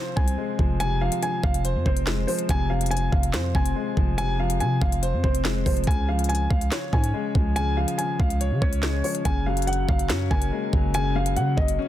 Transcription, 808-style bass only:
0.17 0.37 C2 loud
0.59 1.10 F1 loud
1.44 1.77 F1 loud
1.75 1.85 F2 loud
1.86 2.26 F1 loud
2.49 3.10 F1 loud
3.12 3.35 F1 loud
3.34 3.54 F2 loud
3.55 3.75 F1 loud
3.97 4.62 F1 loud
4.60 4.81 C3 loud
4.82 5.15 F1 loud
5.13 5.23 F2 loud
5.24 5.64 F1 loud
5.66 5.86 F1 loud
5.87 6.48 C#2 loud
6.51 6.71 C#2 loud
6.93 7.13 G#2 loud
7.35 7.86 C#2 loud
8.20 8.53 C#2 loud
8.51 8.61 C#3 loud
8.62 9.02 C#2 loud
9.25 9.86 F#1 loud
9.89 10.11 F#1 loud
10.10 10.30 F#2 loud
10.31 10.51 F#1 loud
10.73 11.38 F#1 loud
11.36 11.57 C#3 loud
11.58 11.79 F#1 loud

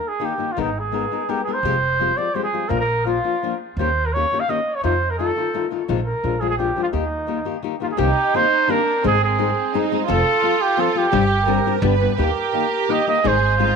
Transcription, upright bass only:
0.58 1.04 G#1 medium
1.63 2.09 F1 medium
2.71 3.17 A#1 medium
3.77 4.23 D#2 medium
4.84 5.29 F2 medium
5.89 6.12 A#1 medium
6.24 6.69 A#1 medium
6.93 7.39 D#2 medium
7.98 8.10 C2 medium
9.05 9.50 G#1 medium
10.10 10.20 F1 medium
11.13 11.58 G1 loud
11.82 12.05 G1 loud
12.18 12.30 D#2 medium
13.25 13.70 G#1 medium

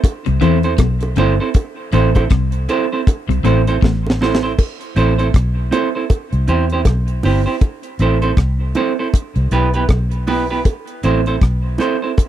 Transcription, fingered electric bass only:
0.27 0.41 C2 medium
0.42 0.77 E2 medium
0.79 1.15 B1 medium
1.17 1.38 G1 loud
1.93 2.29 A1 loud
2.31 2.67 C2 medium
3.29 3.43 C2 medium
3.43 3.80 A1 medium
3.82 4.54 A1 medium
4.97 5.32 A1 loud
5.35 5.70 B1 medium
6.33 6.47 C2 medium
6.48 6.84 E2 medium
6.86 7.22 B1 medium
7.24 7.45 G1 medium
7.99 8.35 A1 medium
8.37 8.73 C2 medium
9.36 9.50 C2 medium
9.51 9.87 B1 medium
9.89 10.61 B1 medium
11.04 11.39 A1 medium
11.42 11.77 B1 medium

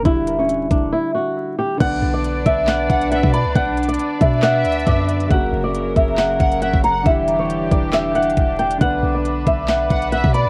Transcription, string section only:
1.80 5.27 D4 medium
1.80 5.27 B4 medium
1.80 3.54 D5 medium
3.55 5.29 D5 medium
5.31 7.04 C#3 medium
5.31 7.04 F#3 medium
5.31 7.04 A#4 medium
7.06 8.79 E3 medium
7.06 10.49 D4 medium
7.06 8.79 G4 medium
8.81 10.49 B4 medium

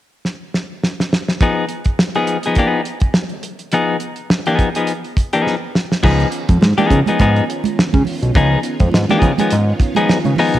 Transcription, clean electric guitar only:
1.42 1.64 F3 medium
1.42 1.64 B3 medium
1.42 1.64 D#4 medium
1.42 1.64 G#4 medium
2.16 2.37 F3 medium
2.16 2.37 B3 medium
2.16 2.36 D#4 medium
2.16 2.36 G#4 medium
2.46 2.57 F3 soft
2.46 2.57 B3 soft
2.46 2.58 D#4 medium
2.46 2.58 G#4 medium
2.58 2.80 F3 medium
2.58 2.80 B3 medium
2.58 2.80 D#4 medium
2.58 2.81 G#4 medium
3.73 3.95 F3 medium
3.73 3.96 B3 medium
3.73 3.96 D#4 medium
3.73 3.96 G#4 medium
4.47 4.68 F3 medium
4.47 4.68 B3 medium
4.47 4.68 D#4 medium
4.47 4.68 G#4 medium
4.76 4.92 F3 soft
4.76 4.92 B3 soft
4.76 4.92 D#4 medium
4.76 4.91 G#4 medium
5.33 5.55 F3 medium
5.33 5.55 B3 medium
5.33 5.54 D#4 medium
5.33 5.54 G#4 medium
6.03 6.26 F3 medium
6.03 6.27 B3 medium
6.03 6.27 D#4 medium
6.03 6.27 G#4 medium
6.78 6.99 F3 medium
6.78 6.99 B3 medium
6.78 6.99 D#4 medium
6.78 6.99 G#4 loud
7.08 7.19 F3 soft
7.08 7.20 B3 soft
7.08 7.20 D#4 medium
7.08 7.20 G#4 medium
7.20 7.43 F3 medium
7.20 7.43 B3 medium
7.20 7.43 D#4 loud
7.20 7.43 G#4 loud
8.36 8.58 F3 medium
8.36 8.58 B3 medium
8.36 8.58 D#4 medium
8.36 8.59 G#4 medium
9.11 9.31 F3 medium
9.11 9.31 B3 medium
9.11 9.31 D#4 medium
9.11 9.31 G#4 medium
9.40 9.55 F3 soft
9.40 9.55 B3 medium
9.40 9.54 D#4 medium
9.40 9.54 G#4 medium
9.97 10.18 F3 medium
9.97 10.18 B3 medium
9.97 10.17 D#4 medium
9.97 10.17 G#4 medium
10.39 10.59 F3 medium
10.39 10.59 B3 medium
10.39 10.59 D#4 loud
10.39 10.59 G#4 loud

